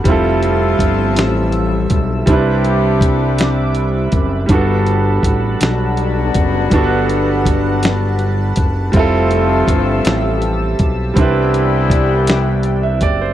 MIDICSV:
0, 0, Header, 1, 6, 480
1, 0, Start_track
1, 0, Key_signature, 1, "major"
1, 0, Tempo, 740741
1, 32, Time_signature, 6, 3, 24, 8
1, 8641, End_track
2, 0, Start_track
2, 0, Title_t, "Analog synth pad"
2, 0, Program_c, 0, 89
2, 0, Note_on_c, 0, 55, 77
2, 27, Note_on_c, 0, 76, 73
2, 27, Note_on_c, 0, 88, 92
2, 28, Note_on_c, 0, 81, 72
2, 1454, Note_off_c, 0, 55, 0
2, 1455, Note_off_c, 0, 76, 0
2, 1455, Note_off_c, 0, 88, 0
2, 1456, Note_off_c, 0, 81, 0
2, 1469, Note_on_c, 0, 60, 79
2, 1471, Note_on_c, 0, 83, 63
2, 1474, Note_on_c, 0, 76, 71
2, 1477, Note_on_c, 0, 86, 96
2, 2896, Note_off_c, 0, 60, 0
2, 2899, Note_off_c, 0, 76, 0
2, 2900, Note_off_c, 0, 86, 0
2, 2909, Note_on_c, 0, 81, 75
2, 2913, Note_on_c, 0, 78, 79
2, 2914, Note_on_c, 0, 55, 82
2, 5766, Note_off_c, 0, 83, 0
2, 5767, Note_off_c, 0, 55, 0
2, 5767, Note_off_c, 0, 78, 0
2, 5795, Note_on_c, 0, 76, 68
2, 5801, Note_on_c, 0, 88, 90
2, 5803, Note_on_c, 0, 67, 75
2, 7205, Note_off_c, 0, 81, 0
2, 7219, Note_off_c, 0, 76, 0
2, 7223, Note_off_c, 0, 67, 0
2, 7238, Note_on_c, 0, 74, 72
2, 7240, Note_on_c, 0, 67, 81
2, 7246, Note_on_c, 0, 79, 80
2, 8641, Note_off_c, 0, 67, 0
2, 8641, Note_off_c, 0, 74, 0
2, 8641, Note_off_c, 0, 79, 0
2, 8641, Note_off_c, 0, 88, 0
2, 8641, End_track
3, 0, Start_track
3, 0, Title_t, "Grand piano"
3, 0, Program_c, 1, 0
3, 0, Control_c, 1, 64, 127
3, 27, Note_on_c, 1, 55, 85
3, 40, Control_c, 1, 64, 0
3, 42, Note_on_c, 1, 60, 71
3, 51, Note_on_c, 1, 64, 78
3, 65, Note_on_c, 1, 65, 73
3, 74, Note_on_c, 1, 69, 85
3, 148, Control_c, 1, 64, 127
3, 1444, Note_off_c, 1, 55, 0
3, 1451, Note_off_c, 1, 60, 0
3, 1456, Note_off_c, 1, 64, 0
3, 1463, Note_off_c, 1, 65, 0
3, 1464, Note_on_c, 1, 55, 81
3, 1467, Note_off_c, 1, 69, 0
3, 1473, Note_on_c, 1, 60, 69
3, 1480, Control_c, 1, 64, 0
3, 1485, Note_on_c, 1, 62, 67
3, 1498, Note_on_c, 1, 64, 75
3, 1509, Note_on_c, 1, 71, 84
3, 1604, Control_c, 1, 64, 127
3, 2882, Note_off_c, 1, 55, 0
3, 2887, Note_off_c, 1, 60, 0
3, 2892, Note_on_c, 1, 55, 77
3, 2893, Note_off_c, 1, 62, 0
3, 2899, Note_off_c, 1, 64, 0
3, 2905, Note_off_c, 1, 71, 0
3, 2906, Note_on_c, 1, 59, 62
3, 2915, Note_on_c, 1, 62, 68
3, 2922, Control_c, 1, 64, 0
3, 2926, Note_on_c, 1, 66, 68
3, 2940, Note_on_c, 1, 69, 79
3, 3048, Control_c, 1, 64, 127
3, 4316, Note_off_c, 1, 55, 0
3, 4324, Note_off_c, 1, 59, 0
3, 4328, Note_off_c, 1, 62, 0
3, 4333, Note_off_c, 1, 66, 0
3, 4340, Note_off_c, 1, 69, 0
3, 4342, Note_on_c, 1, 55, 71
3, 4354, Note_on_c, 1, 59, 72
3, 4366, Note_on_c, 1, 62, 78
3, 4378, Note_on_c, 1, 66, 72
3, 4389, Note_on_c, 1, 69, 65
3, 4413, Note_off_c, 1, 69, 0
3, 4430, Note_on_c, 1, 71, 83
3, 5762, Note_off_c, 1, 55, 0
3, 5767, Note_off_c, 1, 59, 0
3, 5773, Note_off_c, 1, 62, 0
3, 5779, Note_off_c, 1, 66, 0
3, 5779, Note_on_c, 1, 55, 84
3, 5790, Note_on_c, 1, 60, 73
3, 5802, Control_c, 1, 64, 0
3, 5805, Note_off_c, 1, 71, 0
3, 5807, Note_on_c, 1, 64, 74
3, 5814, Note_on_c, 1, 65, 81
3, 5827, Note_on_c, 1, 69, 90
3, 5906, Control_c, 1, 64, 127
3, 7200, Note_off_c, 1, 55, 0
3, 7205, Note_off_c, 1, 60, 0
3, 7214, Note_off_c, 1, 64, 0
3, 7217, Note_off_c, 1, 65, 0
3, 7217, Note_on_c, 1, 55, 76
3, 7224, Note_off_c, 1, 69, 0
3, 7229, Note_on_c, 1, 60, 76
3, 7242, Control_c, 1, 64, 0
3, 7242, Note_on_c, 1, 62, 64
3, 7254, Note_on_c, 1, 64, 72
3, 7264, Note_on_c, 1, 71, 82
3, 7375, Control_c, 1, 64, 127
3, 7954, Note_off_c, 1, 71, 0
3, 8316, Note_on_c, 1, 76, 56
3, 8428, Note_off_c, 1, 76, 0
3, 8441, Note_on_c, 1, 74, 70
3, 8551, Note_off_c, 1, 74, 0
3, 8563, Note_on_c, 1, 72, 59
3, 8639, Note_off_c, 1, 55, 0
3, 8641, Note_off_c, 1, 60, 0
3, 8641, Note_off_c, 1, 62, 0
3, 8641, Note_off_c, 1, 64, 0
3, 8641, Note_off_c, 1, 72, 0
3, 8641, End_track
4, 0, Start_track
4, 0, Title_t, "Horn section"
4, 0, Program_c, 2, 61
4, 31, Note_on_c, 2, 57, 70
4, 32, Note_on_c, 2, 53, 80
4, 32, Note_on_c, 2, 65, 87
4, 33, Note_on_c, 2, 60, 77
4, 1208, Note_off_c, 2, 53, 0
4, 1208, Note_off_c, 2, 57, 0
4, 1208, Note_off_c, 2, 65, 0
4, 1209, Note_off_c, 2, 60, 0
4, 1467, Note_on_c, 2, 55, 71
4, 1467, Note_on_c, 2, 67, 77
4, 1469, Note_on_c, 2, 62, 65
4, 1469, Note_on_c, 2, 64, 71
4, 2646, Note_off_c, 2, 55, 0
4, 2646, Note_off_c, 2, 67, 0
4, 2647, Note_off_c, 2, 62, 0
4, 2647, Note_off_c, 2, 64, 0
4, 3630, Note_on_c, 2, 62, 70
4, 3631, Note_on_c, 2, 59, 67
4, 3632, Note_on_c, 2, 54, 74
4, 3632, Note_on_c, 2, 66, 80
4, 5525, Note_off_c, 2, 62, 0
4, 5526, Note_off_c, 2, 54, 0
4, 5526, Note_off_c, 2, 59, 0
4, 5526, Note_off_c, 2, 66, 0
4, 5796, Note_on_c, 2, 60, 69
4, 5798, Note_on_c, 2, 53, 82
4, 5798, Note_on_c, 2, 57, 73
4, 5798, Note_on_c, 2, 65, 89
4, 6970, Note_off_c, 2, 60, 0
4, 6971, Note_off_c, 2, 53, 0
4, 6971, Note_off_c, 2, 57, 0
4, 6971, Note_off_c, 2, 65, 0
4, 7230, Note_on_c, 2, 52, 81
4, 7230, Note_on_c, 2, 64, 88
4, 7232, Note_on_c, 2, 55, 71
4, 7232, Note_on_c, 2, 59, 68
4, 8407, Note_off_c, 2, 52, 0
4, 8407, Note_off_c, 2, 64, 0
4, 8408, Note_off_c, 2, 55, 0
4, 8408, Note_off_c, 2, 59, 0
4, 8641, End_track
5, 0, Start_track
5, 0, Title_t, "Analog synth bass"
5, 0, Program_c, 3, 38
5, 36, Note_on_c, 3, 29, 99
5, 489, Note_off_c, 3, 29, 0
5, 515, Note_on_c, 3, 31, 87
5, 764, Note_on_c, 3, 33, 98
5, 774, Note_off_c, 3, 31, 0
5, 1213, Note_off_c, 3, 33, 0
5, 1239, Note_on_c, 3, 35, 80
5, 1452, Note_off_c, 3, 35, 0
5, 1472, Note_on_c, 3, 36, 108
5, 2646, Note_off_c, 3, 36, 0
5, 2680, Note_on_c, 3, 30, 83
5, 2893, Note_off_c, 3, 30, 0
5, 2914, Note_on_c, 3, 31, 115
5, 3367, Note_off_c, 3, 31, 0
5, 3390, Note_on_c, 3, 33, 83
5, 3607, Note_off_c, 3, 33, 0
5, 3636, Note_on_c, 3, 35, 104
5, 4089, Note_off_c, 3, 35, 0
5, 4120, Note_on_c, 3, 30, 82
5, 4333, Note_off_c, 3, 30, 0
5, 4357, Note_on_c, 3, 31, 101
5, 5529, Note_off_c, 3, 31, 0
5, 5559, Note_on_c, 3, 30, 84
5, 5772, Note_off_c, 3, 30, 0
5, 5794, Note_on_c, 3, 29, 113
5, 6247, Note_off_c, 3, 29, 0
5, 6275, Note_on_c, 3, 31, 97
5, 6490, Note_off_c, 3, 31, 0
5, 6517, Note_on_c, 3, 33, 97
5, 6969, Note_off_c, 3, 33, 0
5, 6998, Note_on_c, 3, 35, 79
5, 7211, Note_off_c, 3, 35, 0
5, 7238, Note_on_c, 3, 36, 105
5, 8438, Note_on_c, 3, 30, 78
5, 8447, Note_off_c, 3, 36, 0
5, 8641, Note_off_c, 3, 30, 0
5, 8641, End_track
6, 0, Start_track
6, 0, Title_t, "Drums"
6, 34, Note_on_c, 9, 36, 127
6, 34, Note_on_c, 9, 42, 67
6, 98, Note_off_c, 9, 42, 0
6, 99, Note_off_c, 9, 36, 0
6, 276, Note_on_c, 9, 42, 58
6, 341, Note_off_c, 9, 42, 0
6, 512, Note_on_c, 9, 36, 86
6, 520, Note_on_c, 9, 42, 59
6, 576, Note_off_c, 9, 36, 0
6, 585, Note_off_c, 9, 42, 0
6, 755, Note_on_c, 9, 42, 89
6, 769, Note_on_c, 9, 38, 110
6, 819, Note_off_c, 9, 42, 0
6, 834, Note_off_c, 9, 38, 0
6, 987, Note_on_c, 9, 42, 48
6, 1052, Note_off_c, 9, 42, 0
6, 1230, Note_on_c, 9, 42, 52
6, 1235, Note_on_c, 9, 36, 93
6, 1295, Note_off_c, 9, 42, 0
6, 1300, Note_off_c, 9, 36, 0
6, 1471, Note_on_c, 9, 42, 71
6, 1472, Note_on_c, 9, 36, 127
6, 1536, Note_off_c, 9, 42, 0
6, 1537, Note_off_c, 9, 36, 0
6, 1714, Note_on_c, 9, 42, 50
6, 1779, Note_off_c, 9, 42, 0
6, 1949, Note_on_c, 9, 36, 98
6, 1958, Note_on_c, 9, 42, 63
6, 2014, Note_off_c, 9, 36, 0
6, 2023, Note_off_c, 9, 42, 0
6, 2193, Note_on_c, 9, 42, 92
6, 2208, Note_on_c, 9, 38, 117
6, 2258, Note_off_c, 9, 42, 0
6, 2273, Note_off_c, 9, 38, 0
6, 2428, Note_on_c, 9, 42, 50
6, 2492, Note_off_c, 9, 42, 0
6, 2669, Note_on_c, 9, 42, 49
6, 2674, Note_on_c, 9, 36, 107
6, 2733, Note_off_c, 9, 42, 0
6, 2739, Note_off_c, 9, 36, 0
6, 2908, Note_on_c, 9, 42, 65
6, 2910, Note_on_c, 9, 36, 127
6, 2973, Note_off_c, 9, 42, 0
6, 2975, Note_off_c, 9, 36, 0
6, 3152, Note_on_c, 9, 42, 49
6, 3217, Note_off_c, 9, 42, 0
6, 3389, Note_on_c, 9, 36, 97
6, 3398, Note_on_c, 9, 42, 60
6, 3454, Note_off_c, 9, 36, 0
6, 3463, Note_off_c, 9, 42, 0
6, 3633, Note_on_c, 9, 42, 97
6, 3648, Note_on_c, 9, 38, 108
6, 3698, Note_off_c, 9, 42, 0
6, 3713, Note_off_c, 9, 38, 0
6, 3870, Note_on_c, 9, 42, 47
6, 3935, Note_off_c, 9, 42, 0
6, 4111, Note_on_c, 9, 42, 57
6, 4115, Note_on_c, 9, 36, 100
6, 4176, Note_off_c, 9, 42, 0
6, 4180, Note_off_c, 9, 36, 0
6, 4350, Note_on_c, 9, 42, 66
6, 4352, Note_on_c, 9, 36, 127
6, 4415, Note_off_c, 9, 42, 0
6, 4417, Note_off_c, 9, 36, 0
6, 4597, Note_on_c, 9, 42, 55
6, 4662, Note_off_c, 9, 42, 0
6, 4831, Note_on_c, 9, 36, 85
6, 4837, Note_on_c, 9, 42, 64
6, 4895, Note_off_c, 9, 36, 0
6, 4902, Note_off_c, 9, 42, 0
6, 5073, Note_on_c, 9, 42, 88
6, 5087, Note_on_c, 9, 38, 125
6, 5137, Note_off_c, 9, 42, 0
6, 5152, Note_off_c, 9, 38, 0
6, 5306, Note_on_c, 9, 42, 42
6, 5371, Note_off_c, 9, 42, 0
6, 5546, Note_on_c, 9, 42, 57
6, 5555, Note_on_c, 9, 36, 108
6, 5610, Note_off_c, 9, 42, 0
6, 5620, Note_off_c, 9, 36, 0
6, 5788, Note_on_c, 9, 42, 58
6, 5791, Note_on_c, 9, 36, 127
6, 5852, Note_off_c, 9, 42, 0
6, 5856, Note_off_c, 9, 36, 0
6, 6031, Note_on_c, 9, 42, 54
6, 6096, Note_off_c, 9, 42, 0
6, 6270, Note_on_c, 9, 36, 94
6, 6276, Note_on_c, 9, 42, 60
6, 6334, Note_off_c, 9, 36, 0
6, 6340, Note_off_c, 9, 42, 0
6, 6511, Note_on_c, 9, 42, 86
6, 6526, Note_on_c, 9, 38, 124
6, 6576, Note_off_c, 9, 42, 0
6, 6590, Note_off_c, 9, 38, 0
6, 6751, Note_on_c, 9, 42, 47
6, 6816, Note_off_c, 9, 42, 0
6, 6992, Note_on_c, 9, 42, 51
6, 6996, Note_on_c, 9, 36, 101
6, 7056, Note_off_c, 9, 42, 0
6, 7061, Note_off_c, 9, 36, 0
6, 7234, Note_on_c, 9, 36, 127
6, 7236, Note_on_c, 9, 42, 60
6, 7299, Note_off_c, 9, 36, 0
6, 7301, Note_off_c, 9, 42, 0
6, 7479, Note_on_c, 9, 42, 55
6, 7544, Note_off_c, 9, 42, 0
6, 7710, Note_on_c, 9, 36, 97
6, 7720, Note_on_c, 9, 42, 63
6, 7775, Note_off_c, 9, 36, 0
6, 7785, Note_off_c, 9, 42, 0
6, 7953, Note_on_c, 9, 42, 97
6, 7968, Note_on_c, 9, 38, 112
6, 8018, Note_off_c, 9, 42, 0
6, 8033, Note_off_c, 9, 38, 0
6, 8186, Note_on_c, 9, 42, 45
6, 8251, Note_off_c, 9, 42, 0
6, 8429, Note_on_c, 9, 42, 50
6, 8434, Note_on_c, 9, 36, 90
6, 8494, Note_off_c, 9, 42, 0
6, 8499, Note_off_c, 9, 36, 0
6, 8641, End_track
0, 0, End_of_file